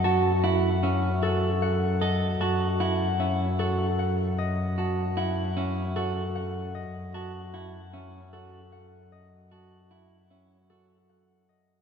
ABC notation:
X:1
M:6/4
L:1/8
Q:1/4=152
K:F#dor
V:1 name="Harp"
[Adefa]2 f2 e2 A2 f2 d2 | a2 f2 e2 A2 f2 d2 | a2 f2 e2 A2 f2 d2 | a2 f2 e2 A2 f2 d2 |
a2 f2 e2 A2 f2 d2 |]
V:2 name="Clean electric guitar"
F z E z C z F z3 A z | F z E z C z F z4 z | F z E z C z F z4 z | F z E z C z F z4 z |
F z E z C z F z4 z |]
V:3 name="Double bass" clef=bass
F,,12- | F,,12- | F,,12- | F,,12- |
F,,12 |]